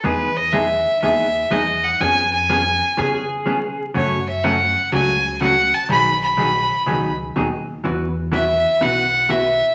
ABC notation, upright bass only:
X:1
M:4/4
L:1/8
Q:"Swing" 1/4=123
K:E
V:1 name="Upright bass" clef=bass
E,,4 D,,2 E,,2 | ^E,,4 C,4 | F,,4 C,,4 | B,,,4 C,,2 D,,2 |
E,,4 B,,,4 |]